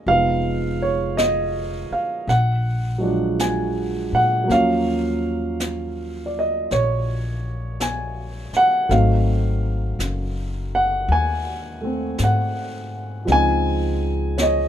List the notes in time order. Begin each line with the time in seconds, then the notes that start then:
Already playing: D#5
0.06 F1 F3 G#3 B3 D#4 F5, brush sweep
0.82 C#5
1.17 D#5, brush sweep, snare, hi-hat pedal
1.91 F5, muted upright bass stroke
2.27 A#1 F#5, brush sweep, snare
2.98 F#3 G#3 D4
3.03 F3
3.39 G#5, brush sweep, snare, hi-hat pedal
4.13 A#2 F#5
4.44 F#3 A#3
4.49 D#2 C#4 F5, brush sweep, snare
4.55 F3
5.60 brush sweep, snare, hi-hat pedal
6.26 D5
6.39 D#5
6.71 A#1 C#5, brush sweep, snare
7.80 G#5, brush sweep, snare, hi-hat pedal
8.53 F#5, muted upright bass stroke, snare
8.89 G#1 F#3 A3 C4 D#4 F5, brush sweep, snare
9.99 F#1, brush sweep, snare, hi-hat pedal
10.75 F#5
11.08 D#2 G#5, brush sweep
11.81 A3 C4
12.18 G#2, brush sweep, snare, hi-hat pedal
12.24 F#5
13.25 C#2 F3 G#3 C4, brush sweep, snare
13.30 D#4 G#5
14.38 C#5, brush sweep, snare, hi-hat pedal
14.42 D#5